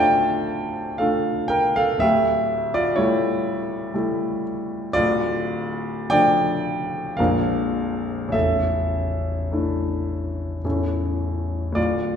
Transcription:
Already playing: D1 D2 A3 D4 F4 G4 C5 D5 E5 F5 G5 A5 A#5
0.98 A3 D4 F4 A4 F5
1.48 A#4 G5
1.76 A4 F5
1.98 D1 D2 G4 E5
2.74 F4 D5
2.96 G3 A3 E4 C#5
3.94 G3 A3 E4
4.93 D1 D2 F4 D5
6.10 F3 A3 D4 D5 G5
7.17 A#0 A#1 F3 A#3 D4 A#4 F5
8.28 A1
8.32 A0 A4 E5
9.52 A3 D4 E4
10.64 A0 A1 A3 C#4 E4
11.72 D2 D5
11.76 D1 F4

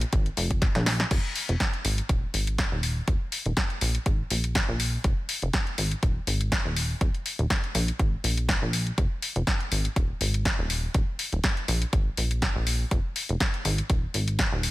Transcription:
0.01 closed hi-hat
0.13 G#1, kick, closed hi-hat
0.26 closed hi-hat
0.37 F1, open hi-hat
0.51 kick, closed hi-hat
0.62 kick, snare, closed hi-hat
0.75 A#1, snare, closed hi-hat
0.86 snare, open hi-hat
1.00 snare, closed hi-hat
1.11 F1, kick, closed hi-hat, crash
1.36 open hi-hat
1.49 F1, closed hi-hat
1.60 kick, snare, closed hi-hat
1.74 closed hi-hat
1.85 G#1, open hi-hat
1.98 closed hi-hat
2.09 D#1, kick, closed hi-hat
2.34 G#1, open hi-hat
2.47 closed hi-hat
2.58 kick, snare, closed hi-hat
2.72 D#1
2.83 open hi-hat
3.08 D#1, kick, closed hi-hat
3.32 open hi-hat
3.46 D#1, closed hi-hat
3.57 kick, snare, closed hi-hat
3.70 closed hi-hat
3.81 A#1, open hi-hat
3.95 closed hi-hat
4.06 G#1, kick, closed hi-hat
4.30 A#1, open hi-hat
4.44 closed hi-hat
4.55 kick, snare, closed hi-hat
4.69 A#1
4.80 open hi-hat
5.04 F1, kick, closed hi-hat
5.29 open hi-hat
5.42 F1, closed hi-hat
5.53 kick, snare, closed hi-hat
5.67 closed hi-hat
5.78 G#1, open hi-hat
5.91 closed hi-hat
6.03 D#1, kick, closed hi-hat
6.27 G#1, open hi-hat
6.41 closed hi-hat
6.52 kick, snare, closed hi-hat
6.65 D#1
6.76 open hi-hat
7.01 D#1, kick, closed hi-hat
7.14 closed hi-hat
7.26 open hi-hat
7.39 D#1, closed hi-hat
7.50 kick, snare, closed hi-hat
7.64 closed hi-hat
7.75 A#1, open hi-hat
7.88 closed hi-hat
7.99 G#1, kick, closed hi-hat
8.24 A#1, open hi-hat
8.37 closed hi-hat
8.49 kick, snare, closed hi-hat
8.62 A#1
8.73 open hi-hat
8.87 closed hi-hat
8.98 F1, kick, closed hi-hat
9.22 open hi-hat
9.36 F1, closed hi-hat
9.47 kick, snare, closed hi-hat
9.60 closed hi-hat
9.72 G#1, open hi-hat
9.85 closed hi-hat
9.96 D#1, kick, closed hi-hat
10.21 G#1, open hi-hat
10.34 closed hi-hat
10.45 kick, snare, closed hi-hat
10.59 D#1
10.70 open hi-hat
10.94 D#1, kick, closed hi-hat
11.19 open hi-hat
11.32 D#1, closed hi-hat
11.44 kick, snare, closed hi-hat
11.57 closed hi-hat
11.68 A#1, open hi-hat
11.82 closed hi-hat
11.93 G#1, kick, closed hi-hat
12.17 A#1, open hi-hat
12.31 closed hi-hat
12.42 kick, snare, closed hi-hat
12.56 A#1
12.67 open hi-hat
12.91 F1, kick, closed hi-hat
13.16 open hi-hat
13.29 F1, closed hi-hat
13.40 kick, snare, closed hi-hat
13.54 closed hi-hat
13.65 G#1, open hi-hat
13.78 closed hi-hat
13.90 D#1, kick, closed hi-hat
14.14 G#1, open hi-hat
14.28 closed hi-hat
14.39 kick, snare, closed hi-hat
14.52 D#1
14.63 open hi-hat

